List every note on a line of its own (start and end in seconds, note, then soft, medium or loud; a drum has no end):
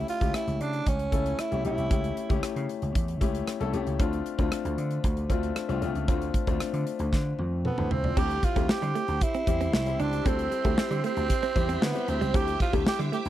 0.00 0.21 A3 medium
0.00 0.21 C#4 medium
0.00 0.21 E4 medium
0.00 0.22 G4 medium
0.08 0.33 F4 medium
0.08 closed hi-hat medium
0.21 0.31 C#2 medium
0.21 0.80 A3 medium
0.21 0.80 C#4 medium
0.21 0.80 E4 medium
0.21 0.80 G4 medium
0.21 kick medium
0.21 closed hi-hat soft
0.34 0.63 E4 medium
0.34 cross-stick loud
0.34 closed hi-hat medium
0.47 0.57 C#2 medium
0.47 closed hi-hat soft
0.60 0.80 C#3 medium
0.60 0.89 D4 medium
0.60 closed hi-hat medium
0.73 closed hi-hat soft
0.86 1.06 C#2 medium
0.86 1.41 C#4 medium
0.86 kick medium
0.86 closed hi-hat medium
0.99 closed hi-hat soft
1.12 1.32 C#2 medium
1.12 1.38 A3 medium
1.12 1.38 C#4 medium
1.12 1.38 E4 medium
1.12 1.38 A4 medium
1.12 kick medium
1.12 closed hi-hat medium
1.26 closed hi-hat medium
1.39 1.65 E4 medium
1.39 cross-stick medium
1.39 closed hi-hat medium
1.51 1.62 C2 medium
1.51 1.60 A3 medium
1.51 1.60 C#4 medium
1.51 1.60 E4 medium
1.51 1.60 G4 medium
1.51 closed hi-hat soft
1.64 1.75 B1 medium
1.64 1.81 A3 medium
1.64 1.82 C#4 medium
1.64 1.82 E4 medium
1.64 2.40 E4 medium
1.64 1.82 G4 medium
1.64 closed hi-hat medium
1.78 1.88 C2 medium
1.78 closed hi-hat soft
1.90 2.10 C#2 medium
1.90 2.16 A3 medium
1.90 2.16 C#4 medium
1.90 2.16 E4 medium
1.90 2.16 G4 medium
1.90 kick medium
1.90 closed hi-hat medium
2.04 closed hi-hat soft
2.17 closed hi-hat medium
2.29 2.40 C#2 medium
2.29 2.89 A3 medium
2.29 2.89 C#4 medium
2.29 2.89 E4 medium
2.29 2.89 G4 medium
2.29 kick medium
2.29 closed hi-hat soft
2.43 muted slap bass stroke soft
2.43 cross-stick loud
2.43 closed hi-hat medium
2.56 2.66 C#3 medium
2.56 closed hi-hat soft
2.69 closed hi-hat medium
2.82 2.92 C#2 medium
2.82 closed hi-hat soft
2.95 3.15 E2 medium
2.95 kick medium
2.95 closed hi-hat medium
3.08 closed hi-hat soft
3.21 3.41 C#2 medium
3.21 3.46 A3 medium
3.21 3.47 C#4 medium
3.21 3.47 E4 medium
3.21 3.47 G4 medium
3.21 kick medium
3.21 closed hi-hat medium
3.35 closed hi-hat medium
3.47 cross-stick loud
3.47 closed hi-hat medium
3.60 3.70 C2 medium
3.60 3.69 A3 medium
3.60 3.69 C#4 medium
3.60 3.69 E4 medium
3.60 3.69 A4 medium
3.60 closed hi-hat soft
3.73 3.83 C2 medium
3.73 3.90 A3 medium
3.73 3.90 C#4 medium
3.73 3.91 E4 medium
3.73 3.91 G4 medium
3.73 closed hi-hat medium
3.87 3.96 C#2 medium
3.87 closed hi-hat soft
3.99 4.19 D2 medium
3.99 4.25 A3 medium
3.99 4.25 C4 medium
3.99 4.25 D4 medium
3.99 4.25 F4 medium
3.99 kick loud
3.99 closed hi-hat medium
4.13 closed hi-hat soft
4.26 closed hi-hat medium
4.38 4.49 D2 medium
4.38 4.97 A3 medium
4.38 4.98 C4 medium
4.38 4.98 D4 medium
4.38 4.98 F4 medium
4.38 kick medium
4.38 closed hi-hat soft
4.52 cross-stick loud
4.52 closed hi-hat medium
4.65 4.75 D2 medium
4.65 closed hi-hat soft
4.78 4.97 D3 medium
4.78 closed hi-hat medium
4.91 closed hi-hat soft
5.04 5.24 D2 medium
5.04 kick medium
5.04 closed hi-hat medium
5.17 closed hi-hat soft
5.29 5.49 D2 medium
5.29 5.55 A3 medium
5.29 5.55 C4 medium
5.29 5.55 D4 medium
5.29 5.56 F4 medium
5.29 kick medium
5.29 closed hi-hat medium
5.43 closed hi-hat soft
5.56 cross-stick loud
5.56 closed hi-hat medium
5.69 5.79 C2 medium
5.69 5.77 A3 medium
5.69 5.78 C4 medium
5.69 5.78 D4 medium
5.69 5.78 F4 medium
5.69 closed hi-hat soft
5.82 5.92 C2 medium
5.82 5.99 A3 medium
5.82 5.99 C4 medium
5.82 5.99 D4 medium
5.82 5.99 F4 medium
5.82 closed hi-hat medium
5.95 6.05 C#2 medium
5.95 closed hi-hat soft
6.08 6.28 D2 loud
6.08 6.33 A3 medium
6.08 6.34 C4 medium
6.08 6.34 D4 medium
6.08 6.34 F4 medium
6.08 kick medium
6.08 closed hi-hat medium
6.22 closed hi-hat soft
6.34 kick medium
6.34 closed hi-hat medium
6.47 6.57 D2 medium
6.47 7.06 A3 medium
6.47 7.06 C4 medium
6.47 7.07 D4 medium
6.47 7.07 F4 medium
6.47 kick medium
6.47 closed hi-hat soft
6.60 muted slap bass stroke soft
6.60 cross-stick loud
6.60 closed hi-hat medium
6.73 6.83 D3 medium
6.73 closed hi-hat soft
6.87 closed hi-hat medium
6.99 7.09 D2 medium
6.99 closed hi-hat soft
7.12 7.32 D3 loud
7.12 kick medium
7.12 snare soft
7.39 7.68 F2 medium
7.39 high tom medium
7.65 7.93 B3 medium
7.65 7.78 C4 soft
7.65 7.77 A4 medium
7.65 mid tom medium
7.78 7.88 D2 medium
7.78 8.03 E4 medium
7.78 8.03 C5 medium
7.78 mid tom medium
7.91 8.11 C#2 medium
7.91 8.20 C4 medium
7.91 floor tom medium
8.04 8.29 F4 soft
8.04 8.29 D5 medium
8.04 floor tom medium
8.16 8.37 D2 medium
8.16 8.42 G3 medium
8.16 8.42 C4 medium
8.16 8.25 C4 medium
8.16 8.42 E4 medium
8.16 13.29 G4 medium
8.16 8.43 G4 medium
8.16 8.46 G4 loud
8.16 13.29 E5 medium
8.16 12.30 C6 medium
8.16 kick medium
8.16 crash medium
8.30 closed hi-hat soft
8.43 8.72 F4 medium
8.43 muted clean electric guitar stroke soft
8.43 kick medium
8.43 closed hi-hat medium
8.55 8.66 D2 medium
8.55 9.15 G3 medium
8.55 8.64 A3 medium
8.55 9.15 C4 medium
8.55 9.15 E4 medium
8.55 9.15 G4 medium
8.55 kick medium
8.55 closed hi-hat soft
8.69 9.24 G4 loud
8.69 muted clean electric guitar stroke soft
8.69 muted slap bass stroke soft
8.69 snare loud
8.82 8.92 D3 medium
8.82 8.90 G3 medium
8.82 closed hi-hat medium
8.95 9.04 A3 medium
8.95 closed hi-hat medium
9.08 9.18 D2 medium
9.08 closed hi-hat soft
9.21 9.74 E4 loud
9.21 kick medium
9.21 closed hi-hat medium
9.34 9.43 C4 medium
9.34 closed hi-hat soft
9.47 9.67 E2 medium
9.47 9.72 G3 medium
9.47 9.73 C4 medium
9.47 9.73 E4 medium
9.47 9.73 G4 medium
9.47 muted clean electric guitar stroke soft
9.47 kick medium
9.47 closed hi-hat medium
9.61 9.69 C4 medium
9.61 closed hi-hat medium
9.73 9.93 C2 medium
9.73 10.03 E4 medium
9.73 snare loud
9.86 10.12 G3 medium
9.86 10.12 C4 medium
9.86 10.12 E4 medium
9.86 10.12 G4 medium
9.86 closed hi-hat soft
10.00 10.19 C#2 medium
10.00 10.08 D4 medium
10.00 10.29 D4 medium
10.00 closed hi-hat medium
10.13 closed hi-hat soft
10.25 10.45 D2 loud
10.25 10.51 G3 medium
10.25 10.51 C4 medium
10.25 10.34 C4 medium
10.25 11.05 C4 medium
10.25 10.51 E4 medium
10.25 10.51 A4 medium
10.25 kick loud
10.25 closed hi-hat medium
10.39 closed hi-hat soft
10.52 muted clean electric guitar stroke soft
10.52 closed hi-hat medium
10.64 10.75 D2 loud
10.64 11.23 G3 medium
10.64 10.73 A3 medium
10.64 11.24 C4 medium
10.64 11.24 E4 medium
10.64 11.24 G4 medium
10.64 kick medium
10.64 closed hi-hat soft
10.78 muted slap bass stroke soft
10.78 muted clean electric guitar stroke soft
10.78 snare loud
10.91 11.01 D3 medium
10.91 10.99 G3 medium
10.91 closed hi-hat soft
11.04 11.12 A3 medium
11.04 11.85 C4 loud
11.04 closed hi-hat medium
11.17 11.27 D2 medium
11.17 closed hi-hat soft
11.30 kick medium
11.30 closed hi-hat medium
11.43 11.51 C4 medium
11.43 closed hi-hat medium
11.55 11.75 E2 medium
11.55 11.81 G3 medium
11.55 11.81 C4 medium
11.55 11.81 E4 medium
11.55 11.82 G4 medium
11.55 muted clean electric guitar stroke soft
11.55 kick medium
11.55 closed hi-hat medium
11.69 11.77 C4 medium
11.69 closed hi-hat medium
11.82 11.92 D3 loud
11.82 11.90 A3 medium
11.82 12.11 B3 medium
11.82 snare loud
11.94 12.20 G3 medium
11.94 12.20 C4 medium
11.94 12.21 E4 medium
11.94 12.21 G4 medium
11.94 muted clean electric guitar stroke soft
11.94 closed hi-hat soft
12.08 12.18 D2 medium
12.08 12.37 C4 medium
12.08 closed hi-hat medium
12.21 12.31 C#2 medium
12.21 12.29 G3 medium
12.21 closed hi-hat medium
12.34 12.54 D2 loud
12.34 12.59 G3 medium
12.34 12.59 C4 medium
12.34 12.43 C4 medium
12.34 12.60 E4 medium
12.34 12.60 G4 medium
12.34 12.61 G4 loud
12.34 13.29 D6 medium
12.34 kick loud
12.34 closed hi-hat medium
12.48 closed hi-hat soft
12.60 12.73 F4 medium
12.60 muted clean electric guitar stroke soft
12.60 kick medium
12.60 closed hi-hat medium
12.73 12.83 D2 medium
12.73 13.29 G3 medium
12.73 12.82 A3 medium
12.73 13.29 C4 medium
12.73 13.29 E4 medium
12.73 13.29 G4 medium
12.73 kick medium
12.73 closed hi-hat soft
12.86 13.00 G4 medium
12.86 muted clean electric guitar stroke soft
12.86 muted slap bass stroke soft
12.86 snare loud
12.99 13.09 D3 medium
12.99 13.08 G3 medium
12.99 closed hi-hat medium
13.12 13.21 A3 medium
13.12 13.29 G4 loud
13.12 closed hi-hat medium
13.25 13.29 D2 medium
13.25 closed hi-hat soft